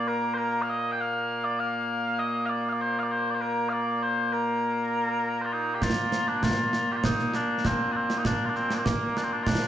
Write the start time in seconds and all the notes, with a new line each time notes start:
Already playing: A#2 A#3
0.07 A#4
0.34 A#4 C5
0.62 F5
0.70 D#5
0.92 G5
1.01 F5
1.44 D5
1.60 F5
2.19 D#5
2.46 D5 F5
2.69 F5
2.73 D5
2.81 C5
2.99 F5
3.03 D5
3.11 C5
3.30 C5 D5
3.41 A#4
3.69 D5 F5
4.02 C5
4.33 A#4
5.42 F4 C5
5.53 D#4
5.74 G4
5.82 F4, concert bass drum, snare
5.97 snare
6.12 snare
6.28 D4
6.43 F4, concert bass drum, snare
6.73 snare
6.92 G4
6.96 F4
7.04 D#4, concert bass drum, snare
7.19 snare
7.34 D4, snare
7.65 C4, concert bass drum, snare
7.92 C4 D4
8.10 snare
8.18 D#4
8.25 D4, concert bass drum, snare
8.45 D4 F4
8.55 C4, snare
8.70 D4, snare
8.78 C4
8.85 A#3, concert bass drum, snare
9.17 D4, snare
9.23 C4
9.32 D4
9.43 F4, concert bass drum, snare
9.47 D4